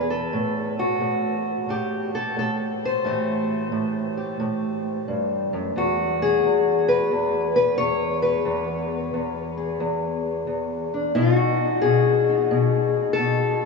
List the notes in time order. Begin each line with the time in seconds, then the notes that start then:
Already playing: E2 B4
0.01 G#4
0.10 A4
0.33 A2
0.79 F#4
1.01 A2
1.69 A2 G4
2.15 A4
2.37 A2 A4
2.85 C5
3.05 A2 E3 A3 G4
3.72 A2
4.17 G4
4.40 A2
5.08 G2
5.53 F#2
5.76 E2 F#4
6.22 G#4
6.44 E2
6.88 B4
7.11 E2
7.56 B4
7.78 E2 C#5
8.22 B4
8.45 E2
9.14 E2
9.57 G#4
9.80 E2
10.47 E2
10.94 D4
11.15 B2 D#4 F4
11.35 F#4
11.82 B2 G#4
12.29 D#4
12.51 B2
13.13 A4
13.19 B2